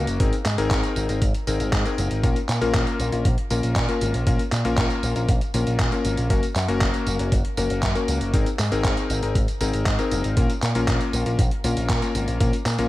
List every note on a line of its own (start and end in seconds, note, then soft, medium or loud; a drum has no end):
0.00 0.17 A#3 medium
0.00 0.17 C#4 medium
0.00 0.17 F#4 medium
0.00 0.17 A#4 loud
0.07 0.18 F#1 medium
0.07 closed hi-hat soft
0.07 tambourine soft
0.20 0.30 G#1 loud
0.20 0.33 C4 medium
0.20 0.33 D#4 medium
0.20 0.33 G#4 medium
0.20 0.33 A#4 medium
0.20 kick loud
0.20 closed hi-hat loud
0.20 tambourine soft
0.33 closed hi-hat soft
0.33 tambourine soft
0.45 0.56 G#2 loud
0.45 clap medium
0.45 closed hi-hat medium
0.45 tambourine medium
0.58 0.68 G#1 medium
0.58 1.06 C4 loud
0.58 1.06 D#4 medium
0.58 1.06 G#4 medium
0.58 1.06 A#4 loud
0.58 closed hi-hat soft
0.58 tambourine soft
0.71 0.81 G#1 loud
0.71 kick loud
0.71 clap loud
0.71 closed hi-hat medium
0.71 tambourine soft
0.84 closed hi-hat soft
0.84 tambourine soft
0.96 1.07 G#1 medium
0.96 closed hi-hat soft
0.96 tambourine medium
1.09 1.19 G#1 medium
1.09 1.22 C4 medium
1.09 1.22 D#4 medium
1.09 1.22 G#4 medium
1.09 1.22 A#4 medium
1.09 closed hi-hat soft
1.09 tambourine soft
1.22 1.32 G#1 loud
1.22 kick loud
1.22 closed hi-hat loud
1.22 tambourine soft
1.34 closed hi-hat soft
1.34 tambourine soft
1.47 1.57 G#1 medium
1.47 1.82 C4 medium
1.47 1.82 D#4 medium
1.47 1.82 G#4 medium
1.47 1.82 A#4 medium
1.47 closed hi-hat medium
1.47 tambourine medium
1.60 1.70 G#1 medium
1.60 closed hi-hat soft
1.60 tambourine soft
1.73 1.83 G#2 loud
1.73 kick loud
1.73 clap loud
1.73 closed hi-hat medium
1.73 tambourine soft
1.85 2.20 C4 medium
1.85 2.20 D#4 medium
1.85 2.20 G#4 medium
1.85 2.20 A#4 loud
1.85 closed hi-hat soft
1.85 tambourine soft
1.98 2.08 F#1 loud
1.98 closed hi-hat medium
1.98 tambourine medium
2.11 2.21 G#1 medium
2.11 closed hi-hat soft
2.11 tambourine soft
2.23 2.34 A#1 loud
2.23 2.36 A#3 medium
2.23 2.36 C#4 medium
2.23 2.36 F4 medium
2.23 2.36 A#4 medium
2.23 kick loud
2.23 closed hi-hat medium
2.23 tambourine soft
2.36 closed hi-hat soft
2.36 tambourine soft
2.49 2.59 A#2 loud
2.49 clap medium
2.49 closed hi-hat medium
2.49 tambourine medium
2.61 2.72 A#1 medium
2.61 3.09 A#3 loud
2.61 3.09 C#4 medium
2.61 3.09 F4 medium
2.61 3.09 A#4 loud
2.61 closed hi-hat soft
2.61 tambourine soft
2.74 2.85 A#1 loud
2.74 kick loud
2.74 clap loud
2.74 closed hi-hat medium
2.74 tambourine soft
2.87 closed hi-hat soft
2.87 tambourine soft
3.00 3.10 A#1 loud
3.00 closed hi-hat soft
3.00 tambourine medium
3.12 3.23 A#1 medium
3.12 3.25 A#3 medium
3.12 3.25 C#4 medium
3.12 3.25 F4 medium
3.12 3.25 A#4 medium
3.12 closed hi-hat soft
3.12 tambourine soft
3.25 3.35 A#1 loud
3.25 kick loud
3.25 closed hi-hat medium
3.25 tambourine soft
3.38 closed hi-hat soft
3.50 3.61 A#1 medium
3.50 3.86 A#3 medium
3.50 3.86 C#4 medium
3.50 3.86 F4 medium
3.50 3.86 A#4 medium
3.50 closed hi-hat medium
3.50 tambourine medium
3.63 3.74 A#1 medium
3.63 closed hi-hat soft
3.63 tambourine soft
3.76 3.86 A#2 loud
3.76 kick loud
3.76 clap loud
3.76 closed hi-hat medium
3.76 tambourine soft
3.89 4.24 A#3 medium
3.89 4.24 C#4 medium
3.89 4.24 F4 medium
3.89 4.24 A#4 medium
3.89 closed hi-hat soft
3.89 tambourine soft
4.01 4.12 G#1 medium
4.01 closed hi-hat medium
4.01 tambourine medium
4.14 4.24 A#1 medium
4.14 closed hi-hat soft
4.14 tambourine soft
4.27 4.37 A#1 loud
4.27 4.40 A#3 medium
4.27 4.40 C#4 medium
4.27 4.40 F4 medium
4.27 4.40 A#4 medium
4.27 kick loud
4.27 closed hi-hat medium
4.27 tambourine soft
4.39 closed hi-hat soft
4.39 tambourine soft
4.52 4.63 A#2 loud
4.52 clap medium
4.52 closed hi-hat medium
4.52 tambourine medium
4.65 4.75 A#1 medium
4.65 5.13 A#3 loud
4.65 5.13 C#4 medium
4.65 5.13 F4 medium
4.65 5.13 A#4 loud
4.65 closed hi-hat soft
4.65 tambourine soft
4.78 4.88 A#1 loud
4.78 kick loud
4.78 clap loud
4.78 closed hi-hat medium
4.78 tambourine soft
4.90 closed hi-hat soft
4.90 tambourine soft
5.03 5.13 A#1 medium
5.03 closed hi-hat soft
5.03 tambourine medium
5.16 5.26 A#1 medium
5.16 5.29 A#3 medium
5.16 5.29 C#4 medium
5.16 5.29 F4 medium
5.16 5.29 A#4 medium
5.16 closed hi-hat soft
5.16 tambourine soft
5.28 5.39 A#1 loud
5.28 kick loud
5.28 closed hi-hat medium
5.28 tambourine soft
5.41 closed hi-hat soft
5.41 tambourine soft
5.54 5.64 A#1 medium
5.54 5.89 A#3 medium
5.54 5.89 C#4 medium
5.54 5.89 F4 medium
5.54 5.89 A#4 medium
5.54 closed hi-hat medium
5.54 tambourine medium
5.67 5.77 A#1 medium
5.67 closed hi-hat soft
5.67 tambourine soft
5.79 5.90 A#2 loud
5.79 kick loud
5.79 clap loud
5.79 closed hi-hat medium
5.79 tambourine soft
5.92 6.27 A#3 medium
5.92 6.27 C#4 medium
5.92 6.27 F4 medium
5.92 6.27 A#4 medium
5.92 closed hi-hat soft
5.92 tambourine soft
6.05 6.15 G#1 medium
6.05 closed hi-hat medium
6.05 tambourine medium
6.17 6.28 A#1 medium
6.17 closed hi-hat soft
6.17 tambourine soft
6.30 6.41 F#1 loud
6.30 6.43 A#3 medium
6.30 6.43 C#4 medium
6.30 6.43 F#4 medium
6.30 6.43 A#4 medium
6.30 kick loud
6.30 closed hi-hat medium
6.30 tambourine soft
6.43 closed hi-hat soft
6.43 tambourine soft
6.56 6.66 F#2 loud
6.56 clap medium
6.56 closed hi-hat medium
6.56 tambourine medium
6.68 6.79 F#1 medium
6.68 7.16 A#3 loud
6.68 7.16 C#4 medium
6.68 7.16 F#4 medium
6.68 7.16 A#4 loud
6.68 closed hi-hat soft
6.68 tambourine soft
6.81 6.91 F#1 loud
6.81 kick loud
6.81 clap loud
6.81 closed hi-hat medium
6.81 tambourine soft
6.94 closed hi-hat soft
6.94 tambourine soft
7.06 7.17 F#1 medium
7.06 closed hi-hat soft
7.06 tambourine medium
7.19 7.30 F#1 medium
7.19 7.32 A#3 medium
7.19 7.32 C#4 medium
7.19 7.32 F#4 medium
7.19 7.32 A#4 medium
7.19 closed hi-hat soft
7.19 tambourine soft
7.32 7.42 F#1 loud
7.32 kick loud
7.32 closed hi-hat medium
7.32 tambourine soft
7.45 closed hi-hat soft
7.57 7.68 F#1 medium
7.57 7.92 A#3 medium
7.57 7.92 C#4 medium
7.57 7.92 F#4 medium
7.57 7.92 A#4 medium
7.57 closed hi-hat medium
7.57 tambourine medium
7.70 7.80 F#1 medium
7.70 closed hi-hat soft
7.70 tambourine soft
7.83 7.93 F#2 loud
7.83 kick loud
7.83 clap loud
7.83 closed hi-hat medium
7.83 tambourine soft
7.95 8.31 A#3 medium
7.95 8.31 C#4 medium
7.95 8.31 F#4 medium
7.95 8.31 A#4 medium
7.95 closed hi-hat soft
7.95 tambourine soft
8.08 8.19 C#2 medium
8.08 closed hi-hat medium
8.08 tambourine medium
8.21 8.31 F#1 medium
8.21 closed hi-hat soft
8.21 tambourine soft
8.34 8.44 G#1 loud
8.34 8.47 C4 medium
8.34 8.47 D#4 medium
8.34 8.47 G#4 medium
8.34 8.47 A#4 medium
8.34 kick loud
8.34 closed hi-hat medium
8.34 tambourine soft
8.46 closed hi-hat soft
8.46 tambourine soft
8.59 8.69 G#2 loud
8.59 clap medium
8.59 closed hi-hat medium
8.59 tambourine medium
8.72 8.82 G#1 medium
8.72 9.20 C4 loud
8.72 9.20 D#4 medium
8.72 9.20 G#4 medium
8.72 9.20 A#4 loud
8.72 closed hi-hat soft
8.72 tambourine soft
8.84 8.95 G#1 loud
8.84 kick loud
8.84 clap loud
8.84 closed hi-hat medium
8.84 tambourine soft
8.97 closed hi-hat soft
8.97 tambourine soft
9.10 9.20 G#1 medium
9.10 closed hi-hat soft
9.10 tambourine medium
9.23 9.33 G#1 medium
9.23 9.36 C4 medium
9.23 9.36 D#4 medium
9.23 9.36 G#4 medium
9.23 9.36 A#4 medium
9.23 closed hi-hat soft
9.23 tambourine soft
9.35 9.46 G#1 loud
9.35 kick loud
9.35 closed hi-hat loud
9.35 tambourine soft
9.48 closed hi-hat soft
9.48 tambourine soft
9.61 9.71 G#1 medium
9.61 9.96 C4 medium
9.61 9.96 D#4 medium
9.61 9.96 G#4 medium
9.61 9.96 A#4 medium
9.61 closed hi-hat medium
9.61 tambourine medium
9.74 9.84 G#1 medium
9.74 closed hi-hat soft
9.74 tambourine soft
9.86 9.96 G#2 loud
9.86 kick loud
9.86 clap loud
9.86 closed hi-hat medium
9.86 tambourine soft
9.99 10.34 C4 medium
9.99 10.34 D#4 medium
9.99 10.34 G#4 medium
9.99 10.34 A#4 loud
9.99 closed hi-hat soft
9.99 tambourine soft
10.11 10.22 F#1 medium
10.11 closed hi-hat medium
10.11 tambourine medium
10.24 10.35 G#1 medium
10.24 closed hi-hat soft
10.24 tambourine soft
10.37 10.47 A#1 loud
10.37 10.50 A#3 medium
10.37 10.50 C#4 medium
10.37 10.50 F4 medium
10.37 10.50 A#4 medium
10.37 kick loud
10.37 closed hi-hat medium
10.37 tambourine soft
10.50 closed hi-hat soft
10.50 tambourine soft
10.62 10.73 A#2 loud
10.62 clap medium
10.62 closed hi-hat medium
10.62 tambourine medium
10.75 10.86 A#1 medium
10.75 11.23 A#3 loud
10.75 11.23 C#4 medium
10.75 11.23 F4 medium
10.75 11.23 A#4 loud
10.75 closed hi-hat soft
10.75 tambourine soft
10.88 10.98 A#1 loud
10.88 kick loud
10.88 clap loud
10.88 closed hi-hat loud
10.88 tambourine soft
11.01 closed hi-hat soft
11.01 tambourine soft
11.13 11.24 A#1 medium
11.13 closed hi-hat soft
11.13 tambourine medium
11.26 11.36 A#1 medium
11.26 11.39 A#3 medium
11.26 11.39 C#4 medium
11.26 11.39 F4 medium
11.26 11.39 A#4 medium
11.26 closed hi-hat soft
11.26 tambourine soft
11.39 11.49 A#1 loud
11.39 kick loud
11.39 closed hi-hat loud
11.39 tambourine soft
11.51 closed hi-hat soft
11.64 11.74 A#1 loud
11.64 11.99 A#3 medium
11.64 11.99 C#4 medium
11.64 11.99 F4 medium
11.64 11.99 A#4 medium
11.64 closed hi-hat medium
11.64 tambourine medium
11.77 11.87 A#1 medium
11.77 closed hi-hat soft
11.77 tambourine soft
11.90 12.00 A#2 loud
11.90 kick loud
11.90 clap loud
11.90 closed hi-hat medium
11.90 tambourine soft
12.02 12.37 A#3 medium
12.02 12.37 C#4 medium
12.02 12.37 F4 medium
12.02 12.37 A#4 medium
12.02 closed hi-hat soft
12.02 tambourine soft
12.15 12.25 G#1 loud
12.15 closed hi-hat medium
12.15 tambourine medium
12.28 12.38 A#1 medium
12.28 closed hi-hat soft
12.28 tambourine soft
12.40 12.51 A#1 loud
12.40 12.53 A#3 medium
12.40 12.53 C#4 medium
12.40 12.53 F4 medium
12.40 12.53 A#4 medium
12.40 kick loud
12.40 closed hi-hat loud
12.40 tambourine soft
12.53 closed hi-hat soft
12.53 tambourine soft
12.66 12.76 A#2 loud
12.66 clap medium
12.66 closed hi-hat medium
12.66 tambourine medium
12.78 12.88 A#1 medium
12.78 12.88 A#3 loud
12.78 12.88 C#4 medium
12.78 12.88 F4 medium
12.78 12.88 A#4 loud
12.78 closed hi-hat soft
12.78 tambourine soft